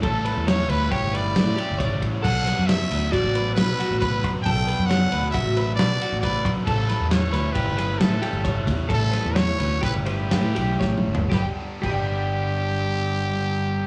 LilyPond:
<<
  \new Staff \with { instrumentName = "Trumpet" } { \time 5/4 \key a \mixolydian \tempo 4 = 136 a'4 cis''8 b'8 cis''8 d''2 r8 | fis''4 e''4 d''4 b'4 b'8. r16 | g''4 fis''4 e''4 d''4 d''8. r16 | a'4 cis''4 b'4 a'4. r8 |
a'4 cis''4 b'8 g'2 r8 | g'8 r8 g'1 | }
  \new Staff \with { instrumentName = "Clean electric guitar" } { \time 5/4 \key a \mixolydian a'8 b'8 cis''8 b'8 g'8 b'4 g'8 cis''4 | a'8 b'8 cis''8 b'8 fis'8 b'4 fis'8 b'4 | a'8 b'8 cis''8 b'8 fis'8 b'4 fis'8 b'4 | a'8 b'8 cis''8 b'8 g'8 b'4 g'8 cis''4 |
a'8 b'8 cis''8 b'8 g'8 b'4 g'8 cis''4 | <g' b' d'' g''>8 r8 <g' b' d'' g''>1 | }
  \new Staff \with { instrumentName = "Overdriven electric guitar" } { \clef bass \time 5/4 \key a \mixolydian <a, e g cis' e'>4. <a, e g cis' e'>4. <a, e g cis' e'>2 | <b, fis b d'>4. <b, fis b d'>4. <b, fis b d'>2 | <b, fis b d'>4. <b, fis b d'>4. <b, fis b d'>2 | <a, e g cis' e'>4. <a, e g cis' e'>4. <a, e g cis' e'>2 |
<a, e g cis' e'>4. <a, e g cis' e'>4. <a, e g cis' e'>2 | <g, d g b d'>8 r8 <g, d g b d'>1 | }
  \new Staff \with { instrumentName = "Fingered electric bass" } { \clef bass \time 5/4 \key a \mixolydian a,,8. e,8. d,8 r16 g,,8. a,8 r16 g,,8. a,,8 | b,,8. fis,8. d,8 r16 a,,8. b,8 r16 a,,8. fis,8 | b,,8. fis,8. d,8 r16 a,,8. b,8 r16 a,,8. fis,8 | a,,8. e,8. d,8 r16 g,,8. a,8 r16 g,,8. e,8 |
a,,8. e,8. d,8 r16 g,,8. a,8 b,,8 a,,8 g,,8 | g,,16 r8. g,,1 | }
  \new DrumStaff \with { instrumentName = "Drums" } \drummode { \time 5/4 <bd cymr>8 cymr8 <cymr sn>8 cymr8 <bd cymr sn>8 cymr8 <cymr sn>8 cymr8 <bd cymr sn>8 <bd cymr>8 | <cymc bd>8 <cymr sn>8 <cymr sn>8 cymr8 <bd cymr sn>8 cymr8 <cymr sn>8 <cymr sn>8 <bd cymr>8 <bd cymr>8 | <bd cymr>8 cymr8 <cymr sn>8 cymr8 <bd cymr sn>8 cymr8 <cymr sn>8 cymr8 <bd cymr sn>8 <bd cymr>8 | <bd cymr>8 <cymr sn>8 <cymr sn>8 <cymr sn>8 <bd cymr>8 <cymr sn>8 <cymr sn>8 cymr8 <bd cymr sn>8 <bd cymr>8 |
<bd cymr>8 <cymr sn>8 <cymr sn>8 cymr8 <bd cymr>8 cymr8 <cymr sn>8 cymr8 \tuplet 3/2 { <bd sn>8 toml8 tomfh8 } | <bd sn>4 <cymc bd>4 r4 r4 r4 | }
>>